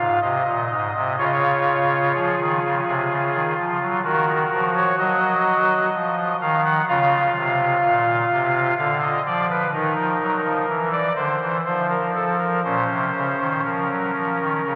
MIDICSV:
0, 0, Header, 1, 2, 480
1, 0, Start_track
1, 0, Key_signature, -5, "minor"
1, 0, Tempo, 949367
1, 605, Time_signature, 3, 2, 24, 8
1, 5399, Tempo, 991736
1, 7371, End_track
2, 0, Start_track
2, 0, Title_t, "Pipe organ"
2, 0, Program_c, 0, 19
2, 0, Note_on_c, 0, 44, 68
2, 0, Note_on_c, 0, 65, 43
2, 0, Note_on_c, 0, 77, 102
2, 95, Note_off_c, 0, 44, 0
2, 99, Note_off_c, 0, 65, 0
2, 99, Note_off_c, 0, 77, 0
2, 107, Note_on_c, 0, 75, 93
2, 109, Note_on_c, 0, 48, 74
2, 217, Note_off_c, 0, 48, 0
2, 231, Note_on_c, 0, 46, 68
2, 339, Note_off_c, 0, 46, 0
2, 352, Note_on_c, 0, 44, 62
2, 459, Note_off_c, 0, 44, 0
2, 475, Note_on_c, 0, 48, 76
2, 581, Note_off_c, 0, 48, 0
2, 584, Note_off_c, 0, 75, 0
2, 595, Note_on_c, 0, 65, 41
2, 596, Note_on_c, 0, 49, 78
2, 596, Note_on_c, 0, 73, 99
2, 629, Note_on_c, 0, 75, 91
2, 630, Note_off_c, 0, 73, 0
2, 663, Note_off_c, 0, 75, 0
2, 667, Note_on_c, 0, 73, 97
2, 1071, Note_off_c, 0, 49, 0
2, 1073, Note_off_c, 0, 73, 0
2, 1085, Note_on_c, 0, 53, 76
2, 1087, Note_on_c, 0, 68, 93
2, 1190, Note_off_c, 0, 53, 0
2, 1206, Note_on_c, 0, 51, 78
2, 1311, Note_off_c, 0, 51, 0
2, 1332, Note_on_c, 0, 49, 75
2, 1434, Note_off_c, 0, 49, 0
2, 1451, Note_on_c, 0, 48, 73
2, 1553, Note_off_c, 0, 48, 0
2, 1567, Note_on_c, 0, 49, 75
2, 1670, Note_off_c, 0, 49, 0
2, 1686, Note_on_c, 0, 51, 75
2, 1787, Note_off_c, 0, 68, 0
2, 1789, Note_off_c, 0, 51, 0
2, 1806, Note_on_c, 0, 53, 71
2, 1909, Note_off_c, 0, 53, 0
2, 1926, Note_on_c, 0, 54, 70
2, 2022, Note_off_c, 0, 65, 0
2, 2028, Note_off_c, 0, 54, 0
2, 2042, Note_on_c, 0, 51, 69
2, 2043, Note_on_c, 0, 66, 51
2, 2044, Note_on_c, 0, 70, 92
2, 2248, Note_off_c, 0, 51, 0
2, 2287, Note_on_c, 0, 53, 77
2, 2394, Note_off_c, 0, 70, 0
2, 2403, Note_on_c, 0, 73, 91
2, 2490, Note_off_c, 0, 53, 0
2, 2506, Note_off_c, 0, 73, 0
2, 2519, Note_on_c, 0, 75, 110
2, 2521, Note_on_c, 0, 54, 75
2, 2978, Note_off_c, 0, 66, 0
2, 2984, Note_off_c, 0, 54, 0
2, 3000, Note_on_c, 0, 53, 78
2, 3204, Note_off_c, 0, 53, 0
2, 3217, Note_off_c, 0, 75, 0
2, 3239, Note_on_c, 0, 51, 71
2, 3240, Note_on_c, 0, 77, 108
2, 3342, Note_off_c, 0, 77, 0
2, 3358, Note_on_c, 0, 78, 110
2, 3444, Note_off_c, 0, 51, 0
2, 3461, Note_off_c, 0, 78, 0
2, 3478, Note_on_c, 0, 65, 47
2, 3479, Note_on_c, 0, 49, 75
2, 3480, Note_on_c, 0, 77, 118
2, 3684, Note_off_c, 0, 49, 0
2, 3721, Note_on_c, 0, 48, 84
2, 3926, Note_off_c, 0, 48, 0
2, 3962, Note_on_c, 0, 46, 82
2, 4166, Note_off_c, 0, 46, 0
2, 4205, Note_on_c, 0, 48, 87
2, 4407, Note_off_c, 0, 48, 0
2, 4419, Note_off_c, 0, 65, 0
2, 4420, Note_off_c, 0, 77, 0
2, 4441, Note_on_c, 0, 50, 80
2, 4441, Note_on_c, 0, 77, 116
2, 4543, Note_off_c, 0, 77, 0
2, 4560, Note_on_c, 0, 75, 105
2, 4644, Note_off_c, 0, 50, 0
2, 4662, Note_off_c, 0, 75, 0
2, 4681, Note_on_c, 0, 74, 110
2, 4682, Note_on_c, 0, 53, 74
2, 4783, Note_off_c, 0, 74, 0
2, 4802, Note_on_c, 0, 71, 92
2, 4885, Note_off_c, 0, 53, 0
2, 4903, Note_off_c, 0, 71, 0
2, 4919, Note_on_c, 0, 51, 78
2, 4919, Note_on_c, 0, 63, 53
2, 4919, Note_on_c, 0, 70, 93
2, 5021, Note_off_c, 0, 51, 0
2, 5039, Note_on_c, 0, 53, 79
2, 5142, Note_off_c, 0, 53, 0
2, 5161, Note_on_c, 0, 54, 68
2, 5263, Note_off_c, 0, 54, 0
2, 5277, Note_on_c, 0, 53, 79
2, 5381, Note_off_c, 0, 53, 0
2, 5387, Note_off_c, 0, 63, 0
2, 5400, Note_on_c, 0, 52, 76
2, 5500, Note_off_c, 0, 70, 0
2, 5515, Note_on_c, 0, 74, 98
2, 5599, Note_off_c, 0, 52, 0
2, 5616, Note_off_c, 0, 74, 0
2, 5632, Note_on_c, 0, 50, 71
2, 5632, Note_on_c, 0, 72, 108
2, 5734, Note_off_c, 0, 50, 0
2, 5753, Note_on_c, 0, 52, 74
2, 5835, Note_off_c, 0, 72, 0
2, 5854, Note_off_c, 0, 52, 0
2, 5870, Note_on_c, 0, 72, 98
2, 5872, Note_on_c, 0, 53, 71
2, 5972, Note_off_c, 0, 72, 0
2, 5990, Note_on_c, 0, 70, 90
2, 6092, Note_off_c, 0, 70, 0
2, 6109, Note_on_c, 0, 69, 79
2, 6212, Note_off_c, 0, 69, 0
2, 6227, Note_on_c, 0, 70, 86
2, 6331, Note_off_c, 0, 70, 0
2, 6338, Note_off_c, 0, 53, 0
2, 6348, Note_on_c, 0, 46, 69
2, 6348, Note_on_c, 0, 72, 94
2, 6349, Note_on_c, 0, 61, 46
2, 6452, Note_off_c, 0, 46, 0
2, 6469, Note_on_c, 0, 48, 66
2, 6573, Note_off_c, 0, 48, 0
2, 6591, Note_on_c, 0, 49, 64
2, 6694, Note_off_c, 0, 49, 0
2, 6713, Note_on_c, 0, 51, 64
2, 6816, Note_off_c, 0, 51, 0
2, 6818, Note_off_c, 0, 72, 0
2, 6835, Note_on_c, 0, 53, 66
2, 6835, Note_on_c, 0, 70, 63
2, 6938, Note_off_c, 0, 53, 0
2, 6955, Note_on_c, 0, 54, 74
2, 7059, Note_off_c, 0, 54, 0
2, 7080, Note_on_c, 0, 53, 63
2, 7183, Note_off_c, 0, 53, 0
2, 7200, Note_on_c, 0, 51, 63
2, 7303, Note_off_c, 0, 51, 0
2, 7322, Note_on_c, 0, 49, 66
2, 7371, Note_off_c, 0, 49, 0
2, 7371, Note_off_c, 0, 61, 0
2, 7371, Note_off_c, 0, 70, 0
2, 7371, End_track
0, 0, End_of_file